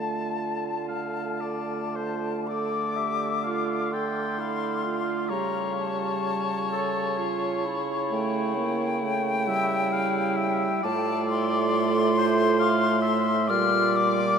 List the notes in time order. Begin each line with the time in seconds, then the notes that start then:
Already playing: D3 A3 F4 A5
0.88 A3 F5
1.40 D5
1.96 C5
2.47 A4 D5 D6
2.96 G4 E5
3.44 F4 F5
3.92 A4 G5 C6
4.38 E4 F5
4.83 F4 F5
5.29 C#3 G3 G4 C#5 A#5
5.79 A5
6.72 A4
7.18 F4
7.65 E4
8.11 A3 G5
8.57 A#3
9.03 A3
9.47 G3 E4 E5
9.93 F5
10.37 E5
10.83 A2 A3 F4 D5 A5
11.30 C6
12.18 C5
12.59 F5
13.02 E5
13.48 A#2 G3 F4 D5 F6
13.96 D6